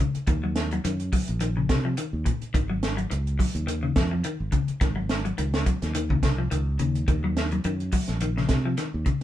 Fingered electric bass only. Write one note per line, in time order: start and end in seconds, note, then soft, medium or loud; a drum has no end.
0.15 muted fingered electric bass stroke soft
0.28 0.78 D#2 medium
0.85 1.10 F#2 medium
1.29 1.65 A#1 medium
1.70 1.95 C3 medium
2.13 2.24 D#2 medium
2.42 muted fingered electric bass stroke soft
2.55 3.05 G#1 medium
3.12 3.36 C#2 medium
3.55 3.91 D#2 medium
3.96 4.21 F2 medium
4.40 4.51 G#1 medium
4.69 muted fingered electric bass stroke soft
4.81 5.31 G#1 medium
5.38 5.63 C#2 medium
5.82 6.18 D#2 medium
6.23 6.48 C2 medium
6.52 6.77 C#2 medium
6.80 7.05 D#2 medium
7.08 7.58 D#2 medium
7.65 7.90 F#2 medium
8.09 8.45 A#1 medium
8.49 8.74 C3 medium
8.94 9.05 D#2 medium